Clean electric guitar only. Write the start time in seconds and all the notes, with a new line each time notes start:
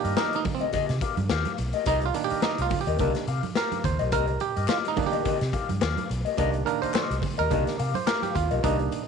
0.04 G4 A#4 D#5
0.16 G4 A#4 D#5
0.45 muted clean electric guitar stroke
0.61 G4 A#4 D#5
0.73 G4 A#4 D#5
0.88 muted clean electric guitar stroke
1.01 G4 A#4 F5
1.17 muted clean electric guitar stroke
1.30 G4 A#4 F5
1.58 muted clean electric guitar stroke
1.74 G4 A#4 D#5
1.86 G4 A#4 D#5
2.02 muted clean electric guitar stroke
2.14 muted clean electric guitar stroke
2.30 G4 A#4 D#5
2.43 G4 A#4 D#5
2.71 muted clean electric guitar stroke
2.87 G4 A#4 D#5
2.99 G4 A#4 D#5
3.15 muted clean electric guitar stroke
3.27 G4 A#4 F5
3.43 muted clean electric guitar stroke
3.55 G4 A#4 F5
3.84 muted clean electric guitar stroke
3.99 G4 A#4 D#5
4.12 G4 A#4 D#5
4.28 muted clean electric guitar stroke
4.40 muted clean electric guitar stroke
4.56 G4 A#4 D#5
4.68 G4 A#4 D#5
4.97 muted clean electric guitar stroke
5.12 G4 A#4 D#5
5.24 G4 A#4 D#5
5.40 muted clean electric guitar stroke
5.53 G4 A#4 F5
5.69 muted clean electric guitar stroke
5.81 G4 A#4 F5
6.09 muted clean electric guitar stroke
6.25 G4 A#4 D#5
6.37 G4 A#4 D#5
6.53 muted clean electric guitar stroke
6.65 muted clean electric guitar stroke
6.81 G4 A#4 D#5
6.93 G4 A#4 D#5
7.23 muted clean electric guitar stroke
7.38 G4 A#4 D#5
7.50 G4 A#4 D#5
7.66 muted clean electric guitar stroke
7.78 G4 A#4 F5
7.94 muted clean electric guitar stroke
8.06 G4 A#4 F5
8.35 muted clean electric guitar stroke
8.51 G4 A#4 D#5
8.63 G4 A#4 D#5
8.79 muted clean electric guitar stroke
8.92 muted clean electric guitar stroke